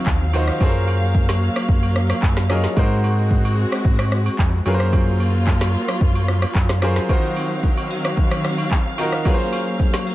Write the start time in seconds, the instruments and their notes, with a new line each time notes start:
Already playing: grand piano D#3 D#4 F4 F#4 C5, string section D#3 F#3 C4 F5, impact
0.06 sub bass D#2, kick, clap, low woodblock, shaker
0.20 shaker
0.33 grand piano D#3 D#4 F4 F#4 C5, high agogo, shaker
0.48 cross-stick
0.60 sub bass F#2, grand piano F#3 C#4 F4 G#4 A4 C5, string section F#3 A#3, kick, high agogo, shaker
0.69 grand piano A#4
0.75 shaker
0.88 high agogo, shaker
1.02 shaker
1.15 kick, shaker
1.29 snare, high agogo, shaker
1.42 shaker
1.56 cross-stick, high agogo, shaker
1.69 sub bass F#2, kick, shaker
1.83 high agogo, shaker
1.96 cross-stick, shaker
2.10 cross-stick, high agogo, shaker
2.23 sub bass F#2, kick, clap, low woodblock, shaker
2.37 snare, shaker
2.49 grand piano F#3 C#4 F4 G#4 A#4 D#5, cross-stick, high agogo, shaker
2.64 snare
2.76 sub bass G#2, grand piano G#3 D#4 F#4 A#4 C5, string section G#3 C4 F#4, kick, high agogo, shaker
2.91 shaker
3.04 high agogo, shaker
3.18 shaker
3.31 kick, shaker
3.45 high agogo, shaker
3.58 shaker
3.72 cross-stick, high agogo, shaker
3.85 sub bass G#2, kick, shaker
3.99 cross-stick, high agogo, shaker
4.12 cross-stick, shaker
4.26 high agogo, shaker
4.39 sub bass F2, kick, clap, low woodblock, shaker
4.53 shaker
4.66 sub bass F#2, grand piano F#3 C#4 F4 G#4 A#4 B4, string section F#3 A#3 F4, high agogo, shaker
4.74 grand piano C5
4.80 cross-stick
4.93 kick, high agogo, shaker
5.07 shaker
5.20 high agogo, shaker
5.34 shaker
5.47 kick, clap, low woodblock, shaker
5.61 snare, high agogo, shaker
5.74 shaker
5.88 cross-stick, high agogo, shaker
6.01 sub bass F#2, kick, shaker
6.15 high agogo, shaker
6.28 cross-stick, shaker
6.42 cross-stick, high agogo, shaker
6.55 sub bass F#2, kick, clap, shaker
6.69 cross-stick, snare, shaker
6.82 grand piano F#3 C#4 F4 G#4 A#4 C5, cross-stick, high agogo, shaker
6.96 snare, shaker
7.09 grand piano D#3 D#4 F4 F#4 C5, string section D#3 F#3 C4 F5, kick, high agogo, shaker
7.23 shaker
7.36 open hi-hat, high agogo, shaker
7.50 shaker
7.63 kick, shaker
7.77 high agogo, shaker
7.91 open hi-hat, shaker
8.04 cross-stick, high agogo, shaker
8.17 kick, shaker
8.31 cross-stick, high agogo, shaker
8.45 cross-stick, open hi-hat, shaker
8.58 high agogo, shaker
8.71 kick, clap, low woodblock, shaker
8.85 shaker
8.98 grand piano D#3 D#4 F4 F#4 A#4, open hi-hat, high agogo, shaker
9.13 cross-stick
9.25 grand piano F#3 C#4 F4 G#4 A#4 B4, string section F#3 A#3, kick, high agogo, shaker
9.34 grand piano C5
9.40 shaker
9.53 open hi-hat, high agogo, shaker
9.67 shaker
9.80 kick, shaker
9.93 snare, high agogo, shaker
10.07 open hi-hat, shaker